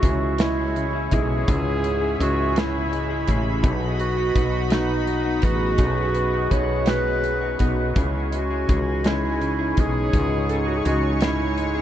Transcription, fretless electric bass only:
0.03 1.08 C#2 medium
1.13 1.46 B1 medium
1.48 2.16 C#2 loud
2.20 3.24 C#2 loud
3.29 3.62 A1 medium
3.63 4.31 B1 loud
4.36 5.39 B1 loud
5.43 5.77 A1 medium
5.79 6.47 B1 loud
6.52 7.56 B1 medium
7.60 7.94 B1 medium
7.96 8.65 C#2 medium
8.69 9.74 C#2 medium
9.78 10.12 B1 medium
10.14 10.82 C#2 loud
10.86 11.82 C#2 loud

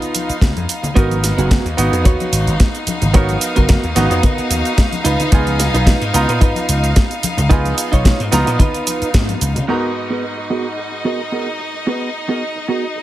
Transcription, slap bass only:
0.29 muted slap bass stroke soft
0.41 0.52 C#2 medium
0.57 0.65 F2 medium
0.96 1.31 G#1 medium
1.38 1.56 F#1 medium
1.65 1.74 D#2 loud
1.78 1.88 G#1 medium
1.92 2.05 F2 loud
2.05 2.15 D#2 medium
2.32 2.42 G#1 medium
2.47 2.56 G#1 medium
2.87 muted slap bass stroke soft
3.02 3.35 G#1 medium
3.58 3.75 F#1 medium
3.84 3.92 D#2 medium
3.96 4.06 G#1 medium
4.11 4.19 F2 loud
4.38 muted slap bass stroke soft
4.50 4.61 D#2 medium
5.05 5.15 C#2 medium
5.32 5.67 C#2 medium
5.74 5.92 B1 medium
6.02 6.10 G#2 loud
6.14 6.24 C#2 medium
6.29 6.41 A#2 loud
6.41 6.52 G#2 loud
6.69 6.79 C#2 medium
6.83 6.92 C#2 medium
7.23 muted slap bass stroke soft
7.38 7.71 C#2 loud
7.93 8.11 B1 medium
8.20 8.29 G#2 loud
8.32 8.42 C#2 medium
8.47 8.56 A#2 loud
9.02 muted slap bass stroke soft
9.14 9.34 G#2 loud
9.41 9.57 C#2 medium
9.56 9.65 C#3 medium

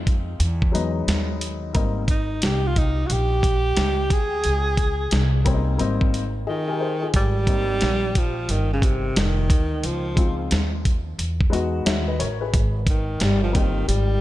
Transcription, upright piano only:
0.00 0.34 F3 medium
0.00 0.35 G#3 medium
0.00 0.35 C4 medium
0.00 0.36 D#4 medium
0.72 1.69 F#3 medium
0.72 1.69 G#3 medium
0.72 1.70 B3 medium
0.72 1.71 D#4 medium
1.73 2.01 G3 medium
1.73 2.01 A#3 medium
1.73 2.02 C4 medium
1.73 2.02 D#4 medium
5.44 5.76 G3 medium
5.44 5.77 A#3 medium
5.44 5.78 C4 medium
5.44 5.55 C#4 medium
5.54 5.79 D#4 medium
5.77 6.21 G3 medium
5.77 6.21 A#3 medium
5.77 6.22 C4 medium
5.77 6.22 D#4 medium
6.47 6.68 F4 soft
6.47 6.68 G#4 medium
6.47 6.67 D#5 medium
6.68 6.80 G4 medium
6.68 6.80 A#4 medium
6.68 7.11 G#5 medium
6.80 7.01 G#4 medium
6.80 7.01 C5 medium
7.02 7.35 F4 soft
7.02 7.34 G#4 medium
7.46 7.89 G3 medium
7.46 7.90 A#3 medium
7.46 7.90 C4 medium
7.46 7.91 D#4 medium
10.16 10.59 G#3 medium
10.16 10.60 C4 medium
10.16 10.60 D#4 medium
10.16 10.61 F4 medium
11.50 12.02 G#3 medium
11.50 12.03 B3 medium
11.50 12.03 D#4 medium
11.50 12.04 F#4 medium
11.86 12.07 C#5 medium
11.86 12.07 E5 medium
12.07 12.19 B4 medium
12.07 12.19 D#5 medium
12.20 12.41 A#4 medium
12.20 12.40 C#5 medium
12.41 12.74 G#4 soft
12.41 12.73 B4 medium
13.53 13.80 A#3 medium
13.53 13.81 C4 medium
13.53 13.81 D#4 medium
13.53 13.82 G4 medium

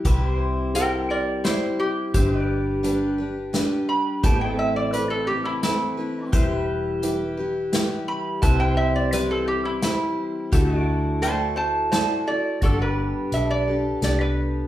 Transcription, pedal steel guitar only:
0.06 2.13 G4 medium
0.06 0.27 B4 medium
0.06 2.14 E5 medium
0.27 2.13 C5 medium
2.15 4.22 G4 medium
2.15 2.36 C5 medium
2.15 2.42 E5 medium
2.36 4.23 B4 medium
2.42 4.23 D5 medium
4.24 4.45 B3 medium
4.24 4.49 G4 medium
4.24 4.51 D5 medium
4.45 6.32 C4 medium
4.45 6.31 A4 medium
4.51 6.33 E5 medium
6.33 8.41 G4 medium
6.33 6.55 C5 medium
6.33 8.42 E5 medium
6.55 8.42 B4 medium
8.43 10.51 G4 medium
8.43 8.64 B4 medium
8.43 10.52 E5 medium
8.64 10.51 C5 medium
10.53 10.73 G4 medium
10.53 12.61 A4 medium
10.53 10.80 E5 medium
10.73 12.60 F#4 medium
10.80 12.61 D5 medium
12.63 12.83 F#4 medium
12.63 12.89 A4 medium
12.63 14.68 D5 medium
12.83 14.68 G4 medium
12.89 14.68 B4 medium

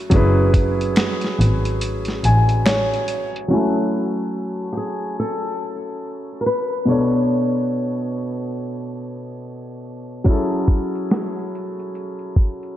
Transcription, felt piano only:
0.10 3.45 F#3 medium
0.10 3.45 C#4 medium
0.10 3.46 E4 medium
0.14 3.47 G#4 medium
0.14 3.47 B4 medium
2.25 2.63 G#5 medium
2.66 3.46 C#5 medium
3.48 6.83 F#3 medium
3.48 6.84 C#4 medium
3.48 6.84 E4 medium
3.53 6.86 A3 medium
3.53 6.85 G#5 medium
6.85 10.21 B2 medium
6.85 10.21 B3 medium
6.85 10.22 D4 medium
6.90 10.23 A4 medium
6.90 10.23 C#5 medium
10.24 12.77 F#3 medium
10.24 12.77 C#4 medium
10.24 12.77 E4 medium
10.29 12.77 G#4 medium
10.29 12.77 A4 medium

